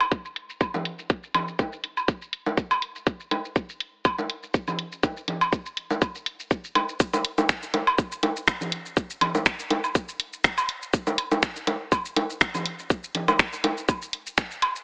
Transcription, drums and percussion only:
0.00 cowbell medium
0.00 high woodblock medium
0.12 kick loud
0.12 shaker medium
0.25 shaker soft
0.36 closed hi-hat medium
0.50 shaker soft
0.61 kick medium
0.61 high woodblock soft
0.61 shaker medium
0.74 low bongo soft
0.74 low conga medium
0.74 shaker soft
0.85 closed hi-hat medium
0.99 shaker soft
1.10 kick loud
1.10 shaker medium
1.23 shaker soft
1.34 closed hi-hat medium
1.34 cowbell medium
1.34 low conga medium
1.34 high woodblock medium
1.48 shaker soft
1.59 kick medium
1.59 low bongo soft
1.59 shaker medium
1.73 shaker soft
1.84 closed hi-hat medium
1.97 high woodblock soft
1.97 shaker soft
2.08 kick loud
2.08 shaker medium
2.22 shaker soft
2.33 closed hi-hat medium
2.46 low bongo soft
2.46 shaker soft
2.57 kick loud
2.57 shaker medium
2.71 cowbell medium
2.71 high woodblock medium
2.71 shaker soft
2.82 closed hi-hat medium
2.96 shaker soft
3.07 kick loud
3.07 shaker medium
3.20 shaker soft
3.31 closed hi-hat medium
3.31 low bongo soft
3.31 high woodblock soft
3.45 shaker soft
3.56 kick loud
3.56 shaker medium
3.69 shaker soft
3.80 closed hi-hat medium
4.05 kick loud
4.05 cowbell medium
4.05 high woodblock medium
4.05 shaker medium
4.18 low bongo soft
4.18 shaker soft
4.30 closed hi-hat medium
4.43 shaker soft
4.54 kick loud
4.54 shaker medium
4.68 low conga medium
4.68 high woodblock soft
4.68 shaker soft
4.79 closed hi-hat medium
4.92 shaker soft
5.03 kick loud
5.03 low bongo soft
5.03 shaker medium
5.17 shaker soft
5.28 closed hi-hat medium
5.28 low conga medium
5.41 cowbell medium
5.41 high woodblock medium
5.41 shaker soft
5.52 kick medium
5.52 shaker medium
5.66 shaker soft
5.77 closed hi-hat medium
5.90 low bongo soft
5.90 shaker soft
6.02 kick loud
6.02 high woodblock soft
6.02 shaker medium
6.15 shaker soft
6.26 closed hi-hat medium
6.40 shaker soft
6.51 kick loud
6.51 shaker medium
6.64 shaker soft
6.75 closed hi-hat medium
6.75 cowbell medium
6.75 low bongo soft
6.75 high woodblock medium
6.89 shaker soft
7.00 kick loud
7.00 shaker medium
7.13 low bongo medium
7.13 high woodblock soft
7.13 shaker soft
7.25 closed hi-hat medium
7.38 low bongo medium
7.38 shaker soft
7.49 finger snap loud
7.49 kick loud
7.49 shaker medium
7.63 shaker soft
7.74 closed hi-hat medium
7.74 low bongo medium
7.87 cowbell medium
7.87 high woodblock medium
7.98 kick loud
7.98 shaker medium
8.12 shaker soft
8.23 closed hi-hat medium
8.23 low bongo medium
8.36 shaker soft
8.48 finger snap loud
8.48 kick loud
8.48 high woodblock soft
8.48 shaker medium
8.61 low conga medium
8.61 shaker soft
8.72 closed hi-hat medium
8.86 shaker soft
8.97 kick loud
8.97 shaker medium
9.10 shaker soft
9.21 closed hi-hat loud
9.21 cowbell medium
9.21 low conga medium
9.21 high woodblock medium
9.35 low bongo medium
9.35 shaker soft
9.46 finger snap loud
9.46 kick loud
9.46 shaker medium
9.59 shaker soft
9.70 closed hi-hat medium
9.70 low bongo medium
9.84 high woodblock soft
9.84 shaker soft
9.95 kick loud
9.95 shaker medium
10.09 shaker soft
10.20 closed hi-hat loud
10.33 shaker soft
10.44 finger snap loud
10.44 kick loud
10.44 shaker medium
10.58 cowbell medium
10.58 high woodblock medium
10.58 shaker soft
10.69 closed hi-hat loud
10.82 shaker soft
10.93 kick loud
10.93 shaker medium
11.07 low bongo medium
11.07 shaker soft
11.18 closed hi-hat loud
11.18 high woodblock soft
11.32 low bongo medium
11.32 shaker soft
11.43 finger snap loud
11.43 kick loud
11.43 shaker medium
11.56 shaker soft
11.67 closed hi-hat loud
11.67 low bongo medium
11.92 kick loud
11.92 cowbell medium
11.92 high woodblock medium
11.92 shaker medium
12.05 shaker soft
12.16 closed hi-hat loud
12.16 low bongo medium
12.30 shaker soft
12.41 finger snap loud
12.41 kick loud
12.41 shaker medium
12.54 low conga medium
12.54 high woodblock soft
12.54 shaker soft
12.66 closed hi-hat loud
12.79 shaker soft
12.90 kick loud
12.90 shaker medium
13.04 shaker soft
13.15 closed hi-hat loud
13.15 low conga medium
13.28 cowbell medium
13.28 low bongo medium
13.28 high woodblock medium
13.28 shaker soft
13.39 finger snap loud
13.39 kick loud
13.39 shaker medium
13.53 shaker soft
13.64 closed hi-hat medium
13.64 low bongo medium
13.77 shaker soft
13.89 kick loud
13.89 high woodblock soft
13.89 shaker medium
14.02 shaker soft
14.13 closed hi-hat loud
14.27 shaker soft
14.38 finger snap loud
14.38 kick loud
14.38 shaker medium
14.51 shaker soft
14.62 closed hi-hat loud
14.62 cowbell medium
14.62 high woodblock medium
14.76 shaker soft

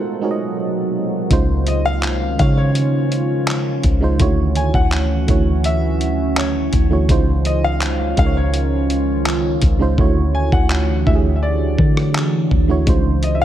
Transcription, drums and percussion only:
1.31 kick loud
1.31 closed hi-hat medium
1.67 closed hi-hat medium
2.03 clap loud
2.03 closed hi-hat medium
2.39 kick loud
2.39 closed hi-hat medium
2.75 closed hi-hat medium
3.12 closed hi-hat medium
3.47 clap loud
3.47 closed hi-hat medium
3.83 kick medium
3.83 closed hi-hat medium
4.20 kick loud
4.20 closed hi-hat medium
4.55 closed hi-hat medium
4.74 kick loud
4.92 clap loud
4.92 closed hi-hat medium
5.28 kick loud
5.28 closed hi-hat medium
5.64 closed hi-hat medium
6.01 closed hi-hat medium
6.37 clap loud
6.37 closed hi-hat medium
6.73 kick medium
6.73 closed hi-hat medium
7.09 kick loud
7.09 closed hi-hat medium
7.45 closed hi-hat medium
7.81 clap loud
7.81 closed hi-hat medium
8.17 kick loud
8.17 closed hi-hat medium
8.54 closed hi-hat medium
8.90 closed hi-hat medium
9.26 clap loud
9.26 closed hi-hat medium
9.62 kick medium
9.62 closed hi-hat medium
9.98 kick loud
10.52 kick loud
10.70 clap loud
11.07 kick loud
11.78 kick loud
11.97 cross-stick medium
12.15 clap loud
12.51 kick medium
12.87 kick loud
12.87 closed hi-hat medium
13.23 closed hi-hat medium

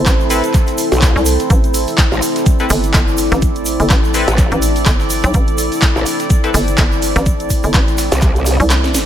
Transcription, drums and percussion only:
0.06 kick loud
0.06 snare loud
0.06 clap loud
0.06 closed hi-hat medium
0.06 shaker medium
0.20 shaker soft
0.30 open hi-hat loud
0.30 shaker medium
0.44 closed hi-hat medium
0.44 shaker soft
0.54 kick loud
0.54 clap soft
0.54 closed hi-hat medium
0.54 shaker medium
0.67 closed hi-hat soft
0.67 shaker soft
0.78 open hi-hat loud
0.78 shaker medium
0.92 closed hi-hat soft
0.92 open hi-hat medium
0.92 shaker soft
1.02 kick loud
1.02 snare loud
1.02 clap loud
1.02 closed hi-hat medium
1.02 shaker loud
1.02 shaker soft
1.16 snare soft
1.16 shaker soft
1.26 open hi-hat loud
1.26 shaker loud
1.26 shaker medium
1.40 closed hi-hat soft
1.40 shaker soft
1.50 kick loud
1.50 closed hi-hat medium
1.50 shaker medium
1.64 closed hi-hat soft
1.64 shaker soft
1.74 open hi-hat loud
1.74 shaker medium
1.74 shaker loud
1.87 closed hi-hat soft
1.87 open hi-hat medium
1.87 shaker soft
1.98 kick loud
1.98 snare loud
1.98 clap loud
1.98 closed hi-hat medium
1.98 shaker medium
2.12 snare soft
2.12 shaker soft
2.22 open hi-hat loud
2.22 shaker medium
2.36 snare medium
2.36 closed hi-hat medium
2.36 shaker soft
2.46 kick loud
2.46 closed hi-hat medium
2.46 shaker medium
2.59 closed hi-hat soft
2.59 shaker soft
2.70 open hi-hat loud
2.70 open hi-hat medium
2.70 shaker medium
2.83 closed hi-hat medium
2.83 shaker soft
2.94 kick loud
2.94 snare loud
2.94 clap loud
2.94 closed hi-hat medium
2.94 shaker medium
3.08 shaker soft
3.17 open hi-hat loud
3.17 shaker loud
3.17 shaker medium
3.32 snare medium
3.32 closed hi-hat medium
3.32 shaker soft
3.42 kick loud
3.42 closed hi-hat medium
3.42 shaker soft
3.42 shaker medium
3.56 closed hi-hat soft
3.56 shaker soft
3.65 open hi-hat loud
3.65 shaker medium
3.80 open hi-hat medium
3.80 shaker soft
3.90 kick loud
3.90 snare loud
3.90 clap loud
3.90 closed hi-hat medium
3.90 shaker medium
4.04 shaker soft
4.14 open hi-hat loud
4.14 shaker medium
4.28 closed hi-hat medium
4.28 closed hi-hat soft
4.28 shaker soft
4.38 kick loud
4.38 clap soft
4.38 closed hi-hat medium
4.38 shaker soft
4.38 shaker medium
4.52 closed hi-hat soft
4.52 shaker soft
4.62 open hi-hat loud
4.62 shaker medium
4.76 closed hi-hat soft
4.76 open hi-hat medium
4.76 shaker soft
4.86 kick loud
4.86 snare loud
4.86 clap loud
4.86 closed hi-hat medium
4.86 shaker medium
5.00 snare soft
5.00 shaker soft
5.10 open hi-hat loud
5.10 shaker medium
5.24 closed hi-hat soft
5.24 closed hi-hat medium
5.24 shaker soft
5.34 kick loud
5.34 closed hi-hat medium
5.34 shaker medium
5.47 closed hi-hat soft
5.47 shaker soft
5.58 open hi-hat loud
5.58 shaker medium
5.72 closed hi-hat soft
5.72 open hi-hat medium
5.72 shaker soft
5.82 kick loud
5.82 snare loud
5.82 clap loud
5.82 closed hi-hat medium
5.82 shaker loud
5.82 shaker medium
5.96 snare soft
5.96 shaker soft
6.06 open hi-hat loud
6.06 shaker medium
6.20 snare medium
6.20 closed hi-hat medium
6.20 shaker soft
6.30 kick loud
6.30 closed hi-hat medium
6.30 shaker medium
6.44 closed hi-hat soft
6.44 shaker soft
6.54 open hi-hat medium
6.54 open hi-hat loud
6.54 shaker medium
6.68 closed hi-hat medium
6.68 shaker soft
6.78 kick loud
6.78 snare loud
6.78 clap loud
6.78 closed hi-hat medium
6.78 shaker soft
6.78 shaker loud
6.92 shaker soft
7.02 open hi-hat loud
7.02 shaker medium
7.16 snare medium
7.16 closed hi-hat medium
7.16 shaker soft
7.26 kick loud
7.26 closed hi-hat medium
7.26 shaker medium
7.26 shaker soft
7.40 closed hi-hat soft
7.40 shaker soft
7.50 kick medium
7.50 open hi-hat loud
7.50 shaker loud
7.50 shaker medium
7.63 open hi-hat medium
7.63 shaker soft
7.74 kick loud
7.74 snare loud
7.74 clap loud
7.74 closed hi-hat medium
7.74 shaker soft
7.74 shaker medium
7.88 closed hi-hat soft
7.88 shaker soft
7.98 snare loud
7.98 open hi-hat loud
7.98 shaker medium
8.12 snare loud
8.12 closed hi-hat medium
8.12 shaker medium
8.12 shaker soft
8.21 kick loud
8.21 clap soft
8.21 closed hi-hat medium
8.21 shaker soft
8.21 shaker medium
8.36 closed hi-hat soft
8.36 shaker soft
8.46 open hi-hat medium
8.46 open hi-hat loud
8.46 shaker medium
8.60 open hi-hat medium
8.60 shaker soft
8.70 snare loud
8.70 snare medium
8.70 clap loud
8.70 closed hi-hat medium
8.70 shaker medium
8.84 snare medium
8.84 closed hi-hat soft
8.84 shaker soft
8.94 snare medium
8.94 open hi-hat medium
8.94 open hi-hat loud
8.94 shaker loud

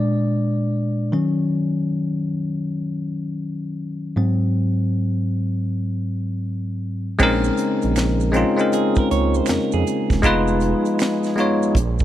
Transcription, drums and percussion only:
7.19 kick medium
7.19 crash medium
7.19 maracas medium
7.44 maracas medium
7.57 closed hi-hat medium
7.57 maracas soft
7.82 closed hi-hat soft
7.82 maracas soft
7.96 finger snap medium
7.96 snare loud
7.96 closed hi-hat medium
7.96 maracas medium
8.20 maracas soft
8.34 closed hi-hat medium
8.59 closed hi-hat soft
8.59 maracas soft
8.73 closed hi-hat medium
8.73 maracas medium
8.95 kick medium
8.95 maracas soft
9.11 closed hi-hat medium
9.34 maracas soft
9.46 finger snap medium
9.46 snare loud
9.46 closed hi-hat medium
9.46 maracas medium
9.72 maracas soft
9.87 closed hi-hat medium
9.87 maracas soft
10.10 kick medium
10.10 snare soft
10.10 maracas soft
10.23 kick loud
10.23 closed hi-hat medium
10.23 maracas medium
10.48 maracas medium
10.61 closed hi-hat medium
10.61 maracas soft
10.85 closed hi-hat soft
10.85 maracas soft
10.99 finger snap medium
10.99 snare loud
10.99 closed hi-hat medium
10.99 maracas medium
11.24 snare soft
11.24 maracas soft
11.38 closed hi-hat medium
11.63 maracas soft
11.75 kick loud
11.75 closed hi-hat loud
11.75 maracas medium
11.99 kick medium
11.99 maracas soft

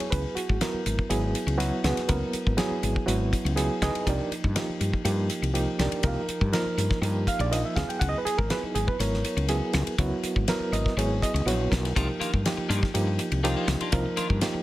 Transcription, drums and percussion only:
0.00 ride medium
0.12 kick loud
0.12 hi-hat pedal medium
0.12 ride medium
0.37 hi-hat pedal medium
0.37 ride medium
0.49 kick medium
0.61 snare loud
0.61 hi-hat pedal medium
0.61 ride medium
0.86 hi-hat pedal medium
0.86 ride medium
0.99 kick medium
1.10 hi-hat pedal medium
1.10 ride medium
1.35 hi-hat pedal medium
1.35 ride medium
1.48 ride medium
1.60 snare soft
1.60 hi-hat pedal medium
1.60 ride medium
1.84 snare loud
1.84 hi-hat pedal medium
1.84 ride medium
1.97 snare soft
1.97 ride medium
2.09 kick loud
2.09 hi-hat pedal medium
2.09 ride medium
2.33 hi-hat pedal medium
2.33 ride medium
2.47 kick medium
2.58 snare loud
2.58 hi-hat pedal medium
2.58 ride medium
2.83 hi-hat pedal medium
2.83 ride medium
2.96 kick medium
3.08 hi-hat pedal medium
3.08 ride medium
3.33 kick medium
3.33 hi-hat pedal medium
3.33 ride medium
3.46 ride medium
3.57 snare soft
3.57 hi-hat pedal medium
3.57 ride medium
3.82 kick medium
3.82 snare loud
3.82 hi-hat pedal medium
3.82 ride medium
3.95 ride medium
4.07 kick loud
4.07 hi-hat pedal medium
4.07 ride medium
4.32 hi-hat pedal medium
4.32 ride medium
4.44 kick medium
4.56 snare loud
4.56 hi-hat pedal medium
4.56 ride medium
4.81 hi-hat pedal medium
4.81 ride medium
4.93 kick medium
5.05 hi-hat pedal medium
5.05 ride medium
5.30 hi-hat pedal medium
5.30 ride medium
5.43 ride medium
5.55 hi-hat pedal medium
5.55 ride medium
5.79 snare loud
5.79 hi-hat pedal medium
5.79 ride medium
5.92 ride medium
6.03 kick loud
6.03 hi-hat pedal medium
6.03 ride medium
6.29 hi-hat pedal medium
6.29 ride medium
6.41 kick medium
6.53 snare loud
6.53 hi-hat pedal medium
6.53 ride medium
6.78 hi-hat pedal medium
6.78 ride medium
6.91 kick medium
6.91 snare soft
7.03 hi-hat pedal medium
7.03 ride medium
7.27 kick medium
7.27 hi-hat pedal medium
7.27 ride medium
7.40 ride medium
7.53 snare soft
7.53 hi-hat pedal medium
7.53 ride medium
7.76 kick medium
7.76 snare loud
7.76 hi-hat pedal medium
7.76 ride medium
7.90 ride medium
8.01 kick loud
8.01 hi-hat pedal medium
8.01 ride medium
8.27 hi-hat pedal medium
8.27 ride medium
8.39 kick medium
8.50 snare loud
8.50 hi-hat pedal medium
8.50 ride medium
8.75 hi-hat pedal medium
8.75 ride medium
8.88 kick medium
9.00 hi-hat pedal medium
9.00 ride medium
9.14 snare soft
9.25 hi-hat pedal medium
9.25 ride medium
9.37 ride medium
9.49 snare soft
9.49 hi-hat pedal medium
9.49 ride medium
9.73 snare medium
9.73 hi-hat pedal medium
9.73 ride medium
9.87 ride medium
9.98 kick loud
9.98 hi-hat pedal medium
9.98 ride medium
10.23 hi-hat pedal medium
10.23 ride medium
10.36 kick medium
10.48 snare loud
10.48 hi-hat pedal medium
10.48 ride medium
10.73 hi-hat pedal medium
10.73 ride medium
10.86 kick medium
10.86 snare soft
10.99 hi-hat pedal medium
10.99 ride medium
11.22 kick medium
11.22 hi-hat pedal medium
11.22 ride medium
11.36 ride medium
11.48 snare soft
11.48 hi-hat pedal medium
11.48 ride medium
11.72 kick medium
11.72 snare medium
11.72 hi-hat pedal medium
11.72 ride medium
11.85 snare soft
11.85 ride medium
11.96 kick loud
11.96 hi-hat pedal medium
11.96 ride medium
12.21 hi-hat pedal medium
12.21 ride medium
12.34 kick medium
12.46 snare loud
12.46 hi-hat pedal medium
12.46 ride medium
12.71 hi-hat pedal medium
12.71 ride medium
12.83 kick medium
12.83 snare soft
12.95 hi-hat pedal medium
12.95 ride medium
13.19 hi-hat pedal medium
13.19 ride medium
13.32 ride medium
13.45 snare soft
13.45 hi-hat pedal medium
13.45 ride medium
13.68 snare loud
13.68 hi-hat pedal medium
13.68 ride medium
13.81 ride medium
13.92 kick loud
13.92 hi-hat pedal medium
13.92 ride medium
14.17 hi-hat pedal medium
14.17 ride medium
14.30 kick medium
14.41 snare loud
14.41 hi-hat pedal medium
14.41 ride medium

